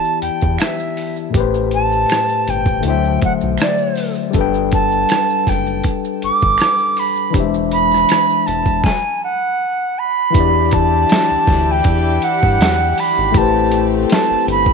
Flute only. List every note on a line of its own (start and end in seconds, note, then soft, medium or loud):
0.00 0.19 A5 medium
0.22 0.61 G5 medium
0.59 1.17 E5 medium
1.74 2.51 A5 loud
2.49 2.86 G5 medium
2.87 3.20 G5 medium
3.24 3.33 F#5 medium
3.61 4.14 D5 medium
4.73 5.50 A5 loud
5.49 5.85 G5 medium
6.24 7.01 D6 loud
6.99 7.35 B5 medium
7.73 8.48 B5 loud
8.46 8.86 A5 medium
8.84 9.22 G#5 medium
9.24 10.00 F#5 medium
9.98 10.75 B5 loud
10.73 11.73 A5 loud
11.71 12.25 G5 medium
12.23 13.01 F#5 loud
12.99 13.39 B5 medium
13.37 13.85 A5 loud
14.13 14.46 A5 medium
14.51 14.73 B5 loud